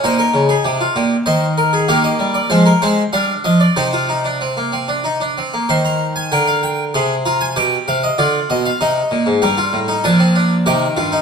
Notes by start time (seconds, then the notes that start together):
0.04 A#2 D#4 C5 G5
0.19 A#4
0.34 C#3
0.49 G#4
0.64 C3 G4
0.81 F4
0.96 A#2 G4
1.26 D#3 C5 D#5
1.58 A#4
1.73 G#4
1.88 D#3 A#3 G4 F5
2.04 D#5
2.19 G3
2.34 D5
2.50 F3 G#3 C5
2.66 A#4
2.82 G#3 C4 C5
3.13 G3 D4 F5
3.44 F3 D#5
3.60 D5
3.76 C3 D#4 G4 C5
3.93 F4
4.09 D#4
4.25 D4
4.41 C4
4.57 A#3
4.72 C4
4.88 D4
5.04 D#4
5.20 D4
5.38 C4
5.54 A#3
5.69 D#3 C5 C6
5.85 A#5
6.16 G#5
6.32 D3 A#4 G5
6.47 F5
6.63 G5
6.94 C3 G#4 C6
7.25 F4 A#5
7.41 G#5
7.56 B2 G4 G5
7.88 C3 F5
8.03 D#5
8.18 D3 F4 D5
8.50 B2 D#5
8.65 F5
8.81 C3 D#4 D#5
9.11 A#2
9.26 G#2
9.42 G2 G3 G4 A#5
9.58 F4
9.73 A2
9.88 D#4
10.04 A#2 F3 D4 A5
10.19 C4
10.35 D4
10.66 C3 D#3 G4 G5
10.97 G2 F4
11.12 D#4